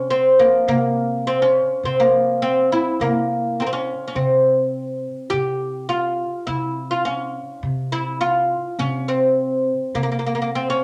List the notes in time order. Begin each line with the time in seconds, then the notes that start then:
Already playing: C3 C#4
0.10 C4
0.39 A#3
0.68 C3 A#3
1.27 C4
1.42 C#4
1.83 C3 C4
2.00 A#3
2.42 C4
2.72 E4
3.00 C3 A#3
3.60 A#3 C4
3.66 C4
3.73 C#4
4.08 C#4
4.15 C3 C4
5.30 C3 G4
5.89 F4
6.47 C3 E4
6.91 F4
7.05 C#4
7.63 C3
7.92 E4
8.21 F4
8.79 C3 C#4
9.08 C4
9.94 C3 A#3
10.03 A#3
10.12 A#3
10.19 A#3
10.26 A#3
10.35 A#3
10.42 A#3
10.55 C4
10.70 C#4